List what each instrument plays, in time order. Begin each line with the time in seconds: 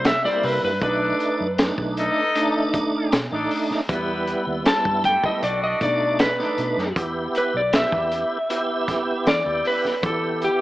Already playing: fingered electric bass C3, tonewheel organ G3 A#3 E4
0.05 electric slide guitar E5, snare, closed hi-hat
0.24 tonewheel organ G3 A#3 E4, horn section C4 E4 A#4 C5, electric slide guitar D5, snare
0.43 fingered electric bass C3, electric slide guitar B4, open hi-hat
0.64 fingered electric bass G2, electric slide guitar B4
0.81 fingered electric bass B1, tonewheel organ A3 D4 D#4, horn section D4 A4 D5, electric slide guitar B4, kick, closed hi-hat
1.20 closed hi-hat
1.41 fingered electric bass F#2
1.58 tonewheel organ A3 D4 D#4, snare, closed hi-hat
1.78 fingered electric bass B1, kick
1.97 horn section D#4 A4 D#5, closed hi-hat
2.35 tonewheel organ A3 D4 D#4, closed hi-hat
2.74 kick, closed hi-hat
3.12 fingered electric bass B2, snare, closed hi-hat
3.31 fingered electric bass A1, tonewheel organ A3 D4 D#4, horn section D4 D#4 A4 D5
3.51 open hi-hat
3.70 muted fingered electric bass stroke, snare
3.89 fingered electric bass E2, tonewheel organ G3 B3 E4, horn section B3 E4 G4 B4, kick, closed hi-hat
4.27 closed hi-hat
4.47 fingered electric bass D#2
4.66 electric slide guitar A5, snare, closed hi-hat
4.85 fingered electric bass G2, kick
5.03 horn section A3 E4 G4 A4, electric slide guitar G5, kick, closed hi-hat
5.23 tonewheel organ G3 B3 E4, electric slide guitar D#5, kick
5.42 fingered electric bass B1, horn section D4 F#4 A4 D5, electric slide guitar D5, closed hi-hat
5.64 electric slide guitar D#5
5.81 fingered electric bass B2, tonewheel organ A3 D4 D#4, electric slide guitar D5, kick, closed hi-hat
6.19 electric slide guitar B4, snare, closed hi-hat
6.38 tonewheel organ A3 D4 D#4, horn section D4 D#4 A4 D5, snare
6.58 fingered electric bass B2, closed hi-hat
6.77 fingered electric bass F#2, snare
6.96 fingered electric bass E2, tonewheel organ B3 E4 G4, kick, closed hi-hat
7.35 electric slide guitar B4, closed hi-hat
7.54 fingered electric bass B1, electric slide guitar D5
7.73 tonewheel organ B3 E4 G4, electric slide guitar E5, snare, closed hi-hat
7.92 fingered electric bass E2, kick
8.12 closed hi-hat
8.50 tonewheel organ B3 E4 G4, closed hi-hat
8.88 kick, snare, closed hi-hat
9.27 fingered electric bass E3, electric slide guitar D5, snare, closed hi-hat
9.46 fingered electric bass D#2, tonewheel organ B3 E4 G4
9.65 electric slide guitar B4, open hi-hat
9.85 muted fingered electric bass stroke, snare
10.03 fingered electric bass E3, tonewheel organ B3 E4 G4, electric slide guitar A4, kick, closed hi-hat
10.42 electric slide guitar G4, closed hi-hat